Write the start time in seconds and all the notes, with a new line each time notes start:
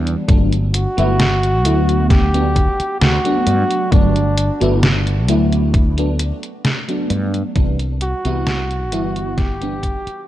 Already playing: E2 E3 G3 B3 D4
0.07 closed hi-hat
0.28 G1 F#3 A3 B3 D4, kick, closed hi-hat
0.52 closed hi-hat
0.74 F#4, closed hi-hat
0.97 G1 F#3 A3 B3 E4, closed hi-hat
1.20 snare, closed hi-hat
1.43 closed hi-hat
1.64 D2 F#3 A3 B3 E4, closed hi-hat
1.89 closed hi-hat
2.10 G4, kick, snare, closed hi-hat
2.33 F#3 A3 B3 D4, closed hi-hat
2.56 kick, closed hi-hat
2.80 muted fretless electric bass stroke, closed hi-hat
3.00 D2 F#4, snare, closed hi-hat
3.24 F#3 A3 B3 D4, closed hi-hat
3.47 G2, closed hi-hat
3.71 closed hi-hat
3.91 G1 F#3 A3 B3 D4, kick, closed hi-hat
4.16 closed hi-hat
4.37 closed hi-hat
4.60 G1 F#3 A3 B3 E4, closed hi-hat
4.83 snare, closed hi-hat
5.07 closed hi-hat
5.28 D2 F#3 A3 B3 E4, closed hi-hat
5.52 closed hi-hat
5.74 kick, closed hi-hat
5.97 F#3 A3 B3 D4, closed hi-hat
6.19 closed hi-hat
6.43 closed hi-hat
6.65 snare, closed hi-hat
6.88 F#3 A3 B3 D4, closed hi-hat
7.10 G2, closed hi-hat
7.34 closed hi-hat
7.55 C2 E3 G3 B3 D4, kick, closed hi-hat
7.79 closed hi-hat
8.01 F#4, closed hi-hat
8.24 C2 E3 G3 B3 E4, closed hi-hat
8.47 snare, closed hi-hat
8.71 closed hi-hat
8.91 G1 E3 G3 B3 E4, closed hi-hat
9.16 closed hi-hat
9.38 G4, kick, snare, closed hi-hat
9.61 E3 G3 B3 D4, closed hi-hat
9.83 kick, closed hi-hat
10.07 muted fretless electric bass stroke, closed hi-hat